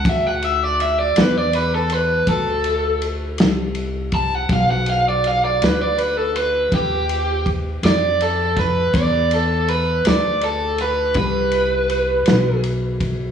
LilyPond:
<<
  \new Staff \with { instrumentName = "Overdriven electric guitar" } { \time 12/8 \key b \phrygian \tempo 4. = 54 e''16 fis''16 e''16 d''16 e''16 d''16 b'16 d''16 b'16 a'16 b'8 a'4 r4. a''16 fis''16 | f''16 fis''16 f''16 d''16 f''16 d''16 b'16 d''16 b'16 a'16 b'8 g'4 r8 d''8 a'8 b'8 | d''8 a'8 b'8 d''8 a'8 b'8 b'2 r4 | }
  \new Staff \with { instrumentName = "Upright bass" } { \clef bass \time 12/8 \key b \phrygian d,4. e,4. d,4. c,4. | b,,4. d,4. dis,4. f,4. | e,4. d,4. c,4. b,,4. | }
  \new DrumStaff \with { instrumentName = "Drums" } \drummode { \time 12/8 <bd cymr>8 cymr8 cymr8 <cymr sn>8 cymr8 cymr8 <bd cymr>8 cymr8 cymr8 <cymr sn>8 cymr8 <bd cymr>8 | <bd cymr>8 cymr8 cymr8 <cymr sn>8 cymr8 cymr8 <bd cymr>8 cymr8 <bd cymr>8 <cymr sn>8 cymr8 <bd cymr sn>8 | <bd cymr>8 cymr8 cymr8 <cymr sn>8 cymr8 cymr8 <bd cymr>8 cymr8 cymr8 <cymr sn>8 cymr8 <bd cymr>8 | }
>>